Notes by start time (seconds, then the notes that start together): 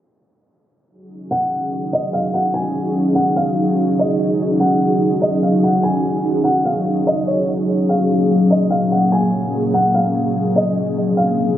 0.90 F#3 C#4 D#4 F#4 G#4
1.31 F#5
1.93 D#5
2.13 F5
2.34 F#5
2.54 G#5
3.15 F#5
3.36 F5
3.99 D#5
4.60 F#5
5.22 D#5
5.43 F5
5.63 F#5
5.83 G#5
6.44 F#5
6.65 F5
7.07 D#5
7.27 C#5
7.48 A#3 C#4 G#4
7.89 F5
8.51 D#5
8.71 F5
8.91 F#5
9.12 G#5
9.74 F#5
9.94 F5
10.56 D#5
10.76 F3 C4 D#4
11.17 F5